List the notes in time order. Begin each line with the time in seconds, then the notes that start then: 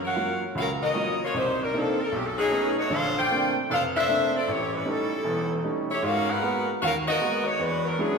Already playing: F#2
0.05 C#4 A#4 F5 F#5
0.16 F#3 A#3 F4
0.55 C#2 C#4 F#4 A#4 F5
0.82 C#4 F#4 A#4 D#5
0.94 F#3 A#3 F4
1.24 A#3 F4 F#4 C#5
1.34 C2 A#3 D#4 G4 C5
1.62 G3 D4 D#4 A#4
1.73 F3 A#3 C4 D4 D#4 A4
2.01 A#4
2.08 B1 A4
2.16 G4
2.26 A4
2.38 F#3 C#4 D#4 G#4
2.50 A3 B3 C#4 D#4
2.79 A3 D#4 F#4 C#5
2.90 A#1 D3 D4 A4 C5 F5
3.19 F4 C5 D5 G5
3.31 A3 A#3 C4 D4
3.70 F1 D4 A4 C5 F5
3.96 D4 A4 C5 E5
4.08 A3 A#3 C4 D4
4.36 C4 F4 A4 D5
4.48 A1 A3 E4 G4 C#5
4.74 G3 C#4 E4 B4
4.85 G3 A3 C#4 D#4
4.89 G3 C#4 E4 A4
5.24 E1 E2
5.64 G3 A3 C#4 D#4
5.90 A3 E4 G4 C#5
6.02 G#2 G#3 C#4 F#4 A#4 F5
6.31 D#4 A#4 B4 F#5
6.43 G#3 A#3 B3 F#4
6.82 D#2 C#4 F#4 A#4 F5
7.08 B3 F#4 A#4 D#5
7.21 G#3 A#3 B3 F#4
7.45 A#3 D#4 F#4 C#5
7.59 E2 G#3 D4 F#4 B4
7.85 F#3 B3 D4 A#4
7.99 F#3 G#3 B3 C#4 D4 E4 G#4